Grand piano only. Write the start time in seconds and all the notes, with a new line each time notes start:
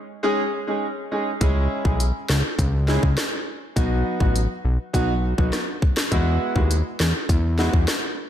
0.23 G#3 C#4 D#4 G#4
0.67 G#3 C#4 D#4 G#4
1.11 G#3 C#4 D#4 G#4
1.41 G#3 C#4 E4 G#4
1.85 G#3 C#4 E4 G#4
2.88 G#3 C#4 E4 G#4
3.76 F#3 B3 D#4 F#4
4.20 F#3 B3 D#4 F#4
4.93 F#3 B3 D#4 F#4
5.38 F#3 B3 D#4 F#4
6.11 G#3 B3 E4 F#4
6.55 G#3 B3 E4 F#4
7.58 G#3 B3 E4 F#4